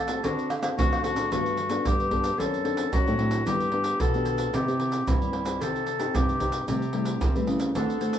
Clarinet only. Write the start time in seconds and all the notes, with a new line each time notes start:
Already playing: A4
0.24 F#4
0.78 F#4
1.04 F#4
1.32 F#4
1.87 G4
2.39 A4
2.93 F#4
3.46 G4
4.00 A4
4.54 G4
5.07 E4
5.61 A4
6.15 G4
6.68 G4
7.75 A4